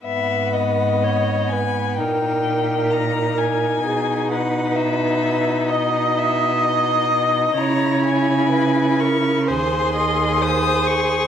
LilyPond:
<<
  \new Staff \with { instrumentName = "Violin" } { \time 4/4 \key gis \minor \tempo 4 = 64 e''8 dis''4 gis''8 g''4 ais''8 gis''8~ | gis''8 fis''8 e''4 dis''8 e''8 dis''4 | ais''8 gis''4 cis'''8 bis''4 dis'''8 cis'''8 | }
  \new Staff \with { instrumentName = "Viola" } { \time 4/4 \key gis \minor b'4 cis''8 b'8 ais'2 | gis'8 b'4. dis''2 | cis''4 b'8 ais'8 bis'8 dis''8 bis'4 | }
  \new Staff \with { instrumentName = "Violin" } { \time 4/4 \key gis \minor b2 dis'2~ | dis'1 | e'2 gis'2 | }
  \new Staff \with { instrumentName = "Cello" } { \clef bass \time 4/4 \key gis \minor gis,2 ais,2 | b,1 | cis2 dis,2 | }
>>